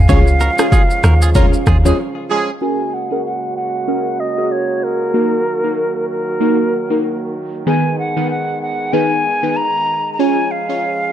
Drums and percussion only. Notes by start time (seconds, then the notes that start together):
0.09 kick, low conga, shaker
0.27 shaker
0.40 high bongo, shaker
0.59 cross-stick, shaker
0.72 kick, high bongo, shaker
0.91 shaker
1.04 cross-stick, shaker
1.22 shaker
1.35 kick, low conga, shaker
1.53 shaker
1.67 kick, cross-stick, shaker
1.85 low bongo, shaker